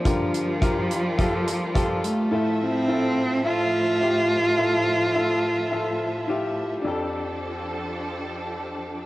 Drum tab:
HH |xxxxxxxx|--------|--------|--------|
BD |o-o-o-o-|--------|--------|--------|